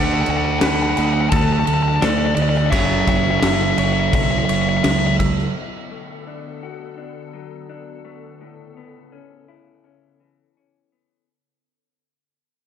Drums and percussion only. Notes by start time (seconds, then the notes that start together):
0.26 crash
0.61 snare, crash
0.97 crash
1.32 kick, crash
1.67 crash
2.02 snare, crash
2.37 crash
2.55 snare
2.72 kick, crash
3.07 kick, crash
3.43 snare, crash
3.78 crash
4.13 kick, crash
4.49 crash
4.84 snare, crash
5.20 kick, crash
5.38 snare